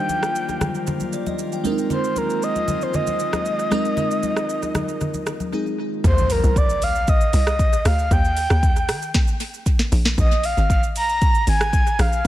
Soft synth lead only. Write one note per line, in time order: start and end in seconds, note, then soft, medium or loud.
0.00 0.84 G5 loud
1.92 2.19 C5 loud
2.18 2.45 A#4 medium
2.43 2.84 D#5 loud
2.83 2.97 C5 medium
2.95 5.53 D#5 loud
6.06 6.33 C5 loud
6.32 6.59 A#4 medium
6.57 6.85 D5 medium
6.83 7.11 F5 loud
7.09 7.34 D#5 loud
7.35 7.88 D#5 loud
7.87 8.14 F5 loud
8.12 9.15 G5 loud
10.19 10.47 D#5 loud
10.45 10.70 F5 loud
10.71 10.82 F5 medium
10.97 11.44 A#5 loud
11.49 12.02 G#5 loud
12.01 12.27 F5 loud